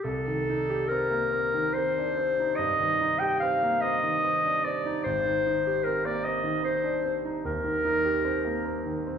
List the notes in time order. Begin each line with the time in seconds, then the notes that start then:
0.03 C2 A4
0.27 D#3
0.49 D#4
0.70 G4
0.88 C4 A#4
1.11 A#3
1.33 C4
1.54 D#3
1.73 C4 C5
1.98 D4
2.17 C4
2.39 D#4
2.56 G2 D#5
2.80 D#3
3.01 D#4
3.19 G4 G5
3.39 C4 F5
3.63 A#3
3.81 C4 D#5
4.03 D#3
4.24 C4
4.45 D4
4.64 C4 D5
4.85 D#4
5.04 G#1 C5
5.25 D#3
5.47 D#4
5.67 G4
5.84 C4 A#4
6.05 A#3 D5
6.24 C4 D#5
6.44 D#3
6.63 C4 C5
6.84 D4
7.04 C4
7.25 D#4
7.45 D#2 A#4
7.64 D#3
7.85 D#4
8.05 G4
8.25 C4
8.45 A#3
8.65 C4
8.86 D#3
9.07 C4